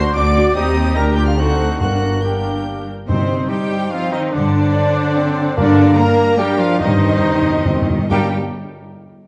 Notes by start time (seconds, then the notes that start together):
Already playing: D2 D4 F#4 C5 C6
0.14 D2 D4 F#4 D5 D6 D7
0.35 D4 F#4
0.54 D#2 C4 D#4 G4 D#5 D#6
0.95 D2 D4 G4 A#4 A#5 A#6
1.16 F4 G4 G5 G6
1.27 F4 F5 F6
1.36 C4 D#4 F#4 A4 C5 F#5 F#6
1.80 G1 G2 A#3 D4 F#4 A#4 F#5 F#6
2.22 A#3 D4 G4 A#4 G5 G6
3.07 G2 C3 G3 C4 D#4 C5
3.49 G3 D#4 G4 C5 G5
3.92 F3 C4 F4 F5
4.12 D#3 D#4 D#5
4.33 G2 D3 F#3 D4 C5 D5
4.77 D4
5.17 C4
5.56 G2 D3 G3 A#3 D4 A#4 D5
5.96 G3 A#3 D4 A#4 A#5
6.36 G3 D4 G4 A#4 G5
6.58 F3 F4 F5
6.78 G2 D#3 G3 C4 D#4 C5 D#5
6.88 G2
6.96 G2
7.04 G2
7.11 G2
7.18 G2
7.26 G2
7.33 G2
7.42 G2
7.50 G2
7.58 G2
7.65 G2 C4
7.74 G2
7.82 G2
7.90 G2
7.98 G2
8.09 G2 G3 A#3 D4 G4 A#4 G5